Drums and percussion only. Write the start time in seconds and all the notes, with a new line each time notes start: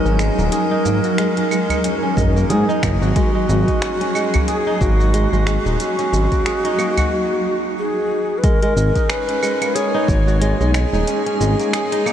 0.06 shaker
0.19 finger snap, shaker
0.39 shaker
0.52 closed hi-hat, shaker
0.86 shaker
1.04 closed hi-hat, shaker
1.18 finger snap, closed hi-hat, shaker
1.37 closed hi-hat
1.51 claves, shaker
1.69 closed hi-hat, udu, claves, shaker
1.84 closed hi-hat, shaker
2.17 kick, udu, shaker
2.37 shaker
2.50 closed hi-hat, shaker
2.70 shaker
2.83 finger snap, kick, shaker
3.02 shaker
3.16 kick, closed hi-hat, shaker
3.49 shaker
3.68 kick, closed hi-hat, shaker
3.82 finger snap, closed hi-hat, shaker
4.01 closed hi-hat
4.15 claves, shaker
4.34 closed hi-hat, udu, claves, shaker
4.48 closed hi-hat, shaker
4.81 kick, shaker
5.00 shaker
5.14 closed hi-hat, shaker
5.33 shaker
5.47 finger snap, shaker
5.66 shaker
5.80 closed hi-hat, shaker
5.99 closed hi-hat, shaker
6.14 shaker
6.32 kick, closed hi-hat, udu, shaker
6.46 finger snap, closed hi-hat, shaker
6.65 closed hi-hat
6.79 claves, shaker
6.97 closed hi-hat, udu, claves, shaker
8.44 kick, closed hi-hat, shaker
8.62 closed hi-hat
8.77 shaker
8.96 kick, closed hi-hat, shaker
9.10 finger snap, closed hi-hat, shaker
9.29 closed hi-hat
9.43 claves, shaker
9.62 closed hi-hat, claves, shaker
9.76 closed hi-hat, shaker
10.08 kick, shaker
10.28 shaker
10.42 closed hi-hat, shaker
10.61 shaker
10.74 finger snap, shaker
10.94 shaker
11.07 closed hi-hat, shaker
11.26 closed hi-hat
11.41 shaker
11.60 closed hi-hat, shaker
11.73 finger snap, closed hi-hat, shaker
11.92 closed hi-hat
12.06 claves, shaker